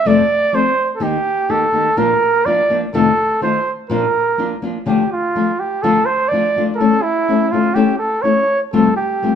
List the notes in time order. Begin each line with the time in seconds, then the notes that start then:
0.05 F2 C3 F3 A3 C4 A4 D5
0.53 F3 A3 C4 A4 C5
0.96 A4
1.00 D#3 A#3 D#4 G4
1.49 D#3 A#3 D#4 G4 A4
1.72 D#3 A#3 D#4 G4
1.97 A#2 F3 A#3 D4 F4 A#4
2.45 F3 A#3 D4 F4 D5
2.70 F3 A#3 D4 F4
2.94 F2 C3 D#3 A3 D#4 F4 A4
3.41 D#3 A3 D#4 F4 C5
3.90 A#2 F3 A#3 D4 F4 A#4
4.38 F3 A#3 D4 F4
4.62 F3 A#3 D4 F4
4.86 D3 F3 A3 D4 F4 G4
5.12 F4
5.35 F3 A3 D4 F4
5.60 G4
5.83 D3 F3 A3 D4 F4 A4
6.06 C5
6.28 F3 D5
6.33 A3 D4 F4
6.56 F3 A3 D4 F4
6.75 A4 A#4
6.80 A3 C#4 E4 A4
7.03 E4
7.29 A3 C#4 E4 A4
7.52 A3 C#4 E4 F4 A4
7.75 A3 C#4 E4 G4 A4
7.99 A4
8.22 A3 C#4 E4 A4 C#5
8.73 F2 C3 G3 A3 C4 F4 A4
8.96 G4
9.22 G3 A3 C4 F4